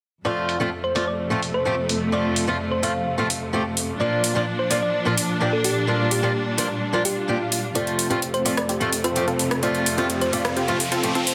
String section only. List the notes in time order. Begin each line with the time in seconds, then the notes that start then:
0.25 F2 C3 A3
4.00 A#2 F3 D4
5.88 G3
7.75 F2 C3 A3